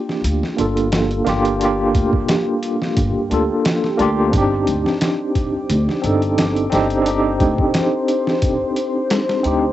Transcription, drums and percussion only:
0.09 snare
0.24 closed hi-hat
0.43 snare
0.59 closed hi-hat
0.77 closed hi-hat
0.92 snare, closed hi-hat
1.11 closed hi-hat
1.27 snare, closed hi-hat
1.45 closed hi-hat
1.61 closed hi-hat
1.95 kick, closed hi-hat
2.13 kick
2.28 snare, closed hi-hat
2.63 closed hi-hat
2.82 snare
2.97 kick, closed hi-hat
3.31 closed hi-hat
3.65 snare, closed hi-hat
3.84 snare
3.99 closed hi-hat
4.33 kick, closed hi-hat
4.67 closed hi-hat
4.86 snare
5.01 snare, closed hi-hat
5.35 kick, closed hi-hat
5.70 closed hi-hat
5.89 snare
6.04 closed hi-hat
6.22 closed hi-hat
6.38 snare, closed hi-hat
6.56 closed hi-hat
6.72 snare, closed hi-hat
6.90 closed hi-hat
7.06 closed hi-hat
7.40 kick, closed hi-hat
7.58 kick
7.74 snare, closed hi-hat
8.08 closed hi-hat
8.27 snare
8.42 kick, closed hi-hat
8.76 closed hi-hat
9.10 snare, closed hi-hat
9.29 snare
9.44 closed hi-hat

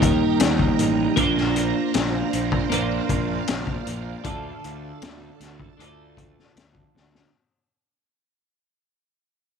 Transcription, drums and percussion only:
0.02 kick, closed hi-hat
0.40 snare, closed hi-hat
0.59 kick
0.79 closed hi-hat
1.17 kick, closed hi-hat
1.37 snare
1.56 closed hi-hat
1.94 snare, closed hi-hat
2.33 closed hi-hat
2.52 kick
2.72 closed hi-hat
3.09 kick, closed hi-hat
3.47 snare, closed hi-hat
3.67 kick
3.87 closed hi-hat
4.24 kick, closed hi-hat
4.64 closed hi-hat
5.02 snare, closed hi-hat
5.40 snare, closed hi-hat
5.60 kick
5.80 closed hi-hat
6.17 kick, closed hi-hat
6.39 snare
6.57 snare, closed hi-hat
6.75 kick
6.97 snare
7.15 snare

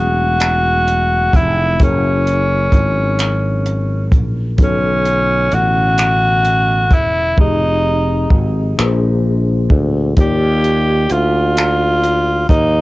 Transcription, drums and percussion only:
0.40 finger snap, closed hi-hat
0.88 closed hi-hat
1.33 kick, closed hi-hat
1.80 kick, closed hi-hat
2.27 closed hi-hat
2.72 kick, closed hi-hat
3.19 finger snap, closed hi-hat
3.66 closed hi-hat
4.12 kick, closed hi-hat
4.58 kick, closed hi-hat
5.05 closed hi-hat
5.52 closed hi-hat
5.98 finger snap, closed hi-hat
6.45 closed hi-hat
6.91 kick, closed hi-hat
7.38 kick
8.30 kick
8.79 finger snap
9.70 kick
10.16 kick, closed hi-hat
10.64 closed hi-hat
11.10 closed hi-hat
11.57 finger snap, closed hi-hat
12.04 closed hi-hat
12.49 kick, closed hi-hat

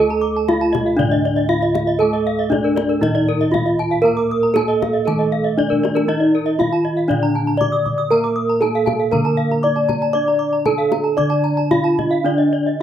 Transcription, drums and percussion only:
0.10 kendang slap
0.48 kendang high
0.75 kendang high, kendang low
0.88 kendang slap
1.00 kendang low
1.12 kendang slap
1.38 kendang slap
1.63 kendang slap
1.75 kendang high, kendang low
1.88 kendang slap
2.14 kendang slap
2.52 kendang high, kendang low
2.77 kendang high
2.90 kendang slap
3.03 kendang low
3.15 kendang slap
3.41 kendang slap
3.54 kendang high, kendang low
3.67 kendang slap
3.93 kendang slap
4.17 kendang slap
4.44 kendang slap
4.56 kendang high
4.70 kendang slap
4.82 kendang high, kendang low
4.96 kendang slap
5.08 kendang low
5.20 kendang slap
5.46 kendang slap
5.60 kendang low
5.72 kendang low
5.85 kendang high
5.96 kendang high
6.23 kendang slap
6.61 kendang high, kendang low
6.99 kendang slap
7.11 kendang low
7.24 kendang slap
7.49 kendang slap
7.61 kendang high, kendang low
7.74 kendang slap
7.86 kendang low
7.99 kendang slap
8.25 kendang slap
8.62 kendang high
8.87 kendang high, kendang low
9.00 kendang slap
9.13 kendang low
9.26 kendang slap
9.51 kendang slap
9.76 kendang slap
9.89 kendang high, kendang low
10.02 kendang slap
10.28 kendang slap
10.65 kendang high, kendang low
10.92 kendang high
11.06 kendang slap
11.18 kendang low
11.32 kendang slap
11.58 kendang slap
11.71 kendang high, kendang low
11.85 kendang slap
11.99 kendang high, kendang low
12.12 kendang slap
12.41 kendang slap
12.68 kendang slap

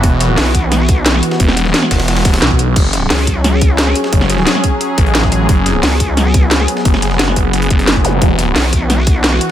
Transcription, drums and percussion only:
0.03 kick, closed hi-hat
0.21 snare, closed hi-hat
0.38 snare, closed hi-hat, open hi-hat
0.46 snare
0.55 kick, closed hi-hat
0.72 snare, closed hi-hat
0.89 kick, closed hi-hat
1.06 snare, closed hi-hat
1.14 snare
1.23 closed hi-hat
1.31 snare
1.40 kick, closed hi-hat
1.48 snare
1.57 snare, closed hi-hat
1.66 snare
1.74 snare, closed hi-hat
1.83 snare
1.91 kick, snare, closed hi-hat, open hi-hat
2.00 snare, open hi-hat
2.08 snare, closed hi-hat, open hi-hat
2.17 snare, open hi-hat
2.25 kick, snare, closed hi-hat, open hi-hat
2.34 snare, open hi-hat
2.42 snare, closed hi-hat
2.51 kick
2.59 closed hi-hat
2.76 kick, closed hi-hat, crash
2.93 snare, closed hi-hat
3.10 snare, closed hi-hat, open hi-hat
3.19 snare
3.27 kick, closed hi-hat
3.44 snare, closed hi-hat
3.61 kick, closed hi-hat
3.78 snare, closed hi-hat
3.87 snare
3.95 closed hi-hat
4.04 snare
4.13 kick, closed hi-hat
4.21 snare
4.30 snare, closed hi-hat
4.38 snare
4.47 snare, closed hi-hat
4.55 snare
4.64 kick, closed hi-hat
4.81 closed hi-hat
4.98 kick, closed hi-hat
5.06 closed hi-hat
5.15 snare, closed hi-hat
5.23 kick, snare
5.32 closed hi-hat
5.49 kick, closed hi-hat
5.66 snare, closed hi-hat
5.83 snare, closed hi-hat, open hi-hat
5.92 snare
6.00 kick, closed hi-hat
6.17 snare, closed hi-hat
6.34 kick, closed hi-hat
6.51 snare, closed hi-hat
6.60 snare
6.68 closed hi-hat
6.77 snare
6.85 kick, closed hi-hat
6.94 snare
7.02 snare, closed hi-hat
7.11 snare
7.19 snare, closed hi-hat
7.28 snare
7.36 kick, closed hi-hat
7.53 snare, closed hi-hat
7.62 closed hi-hat
7.70 kick, closed hi-hat
7.79 snare, closed hi-hat
7.87 snare, closed hi-hat
7.96 kick
8.05 snare, closed hi-hat
8.22 kick, closed hi-hat
8.39 snare, closed hi-hat
8.56 snare, closed hi-hat, open hi-hat
8.64 snare
8.73 kick, closed hi-hat
8.90 snare, closed hi-hat
9.07 kick, closed hi-hat
9.24 snare, closed hi-hat
9.32 snare
9.41 closed hi-hat

